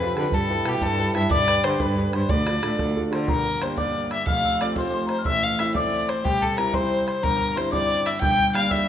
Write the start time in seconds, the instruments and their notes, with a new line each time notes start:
Already playing: cello F2, grand piano C3, fiddle B4
0.01 grand piano C4 F4 A4, bodhran
0.06 celesta B5
0.14 cello D3, grand piano C4 F4 A4, celesta A5 B5, bodhran
0.18 fiddle B4
0.32 cello G2, grand piano G3, fiddle A4, celesta A5, bodhran
0.50 grand piano E4 G4 B4
0.65 cello B2, grand piano E4 G4 B4, fiddle G4, celesta G5, bodhran
0.81 cello G2, grand piano G3, fiddle A4, celesta A5, bodhran
0.96 grand piano E4 G4 B4, celesta B5, bodhran
1.00 celesta A5
1.13 cello G2, grand piano E4 G4 B4, fiddle E5, celesta G5 A5, bodhran
1.30 cello G2, grand piano G3, fiddle D5, celesta D6, bodhran
1.48 grand piano D4 G4 B4, bodhran
1.64 cello D3, grand piano D4 G4 B4, fiddle C5, celesta C6, bodhran
1.80 cello G2, grand piano D3, fiddle B4, celesta B5, bodhran
1.97 grand piano D4 G4 B4, bodhran
2.13 cello G2, grand piano D4 G4 B4, fiddle C5, celesta C6, bodhran
2.29 cello D2, grand piano D3, fiddle D5, celesta D6, bodhran
2.46 grand piano D4 F4 A4, bodhran
2.62 cello A2, grand piano D4 F4 A4, bodhran
2.78 cello D2, grand piano A3, bodhran
2.96 grand piano D4 F4 A4, bodhran
3.11 cello D3, grand piano D4 F4 A4, fiddle C5, celesta C6, bodhran
3.27 grand piano G1 G2, fiddle A#4, celesta A#5, bodhran
3.46 bodhran
3.62 grand piano A#3 D4 G4, fiddle C5, bodhran
3.78 grand piano A#3 D4 G4, fiddle D5, celesta D6, bodhran
3.87 bodhran
3.95 bodhran
4.11 fiddle E5, celesta E6, bodhran
4.27 grand piano F1 F2, fiddle F5, celesta F6, bodhran
4.45 celesta E6, bodhran
4.61 grand piano A3 C4 F4, fiddle D5, celesta D6, bodhran
4.76 grand piano A3 C4 F4, fiddle C5, celesta C6, bodhran
4.85 bodhran
4.90 celesta D6, bodhran
4.94 celesta C6
5.06 celesta A#5 C6, bodhran
5.11 fiddle C5
5.19 celesta F6
5.25 grand piano A1 A2, fiddle E5, celesta E6, bodhran
5.43 fiddle F5, bodhran
5.59 grand piano A3 C4 E4, fiddle E5, celesta E6, bodhran
5.74 grand piano A3 C4 E4, fiddle D5, celesta D6, bodhran
5.85 bodhran
5.93 bodhran
6.08 fiddle C5, celesta C6, bodhran
6.24 grand piano C2 C3, fiddle G4, celesta G5, bodhran
6.42 fiddle A4, celesta A5, bodhran
6.57 grand piano G3 C4 E4, fiddle A#4, celesta A#5, bodhran
6.73 grand piano G3 C4 E4, fiddle C5, celesta C6, bodhran
6.83 bodhran
7.07 fiddle C5, celesta C6, bodhran
7.23 grand piano G1 G2, fiddle A#4, celesta A#5, bodhran
7.41 bodhran
7.56 grand piano G3 C4 E4, fiddle C5, celesta C6, bodhran
7.72 grand piano G3 C4 E4, fiddle D5, celesta D6, bodhran
7.82 bodhran
7.91 bodhran
8.06 fiddle E5, celesta E6, bodhran
8.21 grand piano G1 G2, fiddle G5, celesta G6, bodhran
8.39 bodhran
8.50 grand piano G3, celesta F6 G6
8.55 grand piano A#3 D4, fiddle F5, bodhran
8.70 grand piano G3 A#3 D4, fiddle E5, celesta E6, bodhran
8.80 bodhran